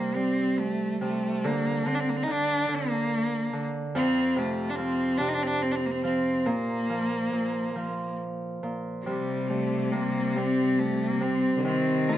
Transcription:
Already playing: harp C3 G3, cello A#3
0.16 harp G3, cello C4
0.59 cello A3
1.01 harp C3, cello A3
1.44 harp D3, cello A#3
1.86 harp D3, cello C4
1.95 cello D4
2.00 cello C4
2.09 cello A#3
2.16 cello C4
2.23 cello D#4
2.27 harp D3, cello D4
2.68 harp D3
2.75 cello A#3
3.53 harp D3
3.95 harp F2, cello C4
4.36 harp C3, cello A3
4.69 cello D4
4.75 harp F3, cello C4
5.18 harp C3, cello D4
5.28 cello D#4
5.34 cello D4
5.42 cello C4
5.47 cello D4
5.62 cello C4
5.71 cello D4
5.76 cello C4
5.86 cello A#3
5.91 cello C4
6.03 harp F3, cello C4
6.46 harp A#2, cello A#3
6.89 harp F3
7.33 harp A#2
7.75 harp F3
8.63 harp A#2
9.04 cello C3 G3, harp C3
9.48 harp G3, cello A3
9.92 harp C3, cello A#3
10.36 harp G3, cello C4
10.79 cello A3
11.03 cello A#3
11.20 harp C3, cello C4
11.57 cello D3
11.61 harp C3, cello D#3
11.65 cello C4
12.08 harp A3, cello D#4
12.14 cello F4

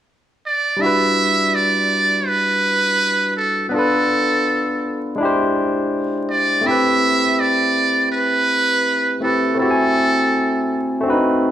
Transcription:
0.46 muted trumpet D5
0.77 tine electric piano G3 D4
0.81 tine electric piano E4 F#4, muted trumpet E5
0.86 tine electric piano B4
1.55 muted trumpet D5
2.27 muted trumpet B4
3.37 muted trumpet A4
3.69 tine electric piano B3 D4, muted trumpet B4
3.74 tine electric piano F4 A4, muted trumpet A4
3.79 tine electric piano B4
5.16 tine electric piano G#3 D4
5.20 tine electric piano E4 G4
5.25 tine electric piano C5
6.30 muted trumpet D5
6.61 tine electric piano A3 C4
6.66 tine electric piano E4 G4, muted trumpet E5
6.71 tine electric piano B4
7.40 muted trumpet D5
8.12 muted trumpet B4
9.20 tine electric piano A3 C4 E4 G4, muted trumpet A4
9.25 tine electric piano B4
9.55 tine electric piano A3 C4
9.59 tine electric piano E4 F#4, muted trumpet A4
9.64 tine electric piano G4
9.71 tine electric piano G#5
11.01 tine electric piano A3 C4
11.05 tine electric piano D4 F#4
11.10 tine electric piano D#4 B4

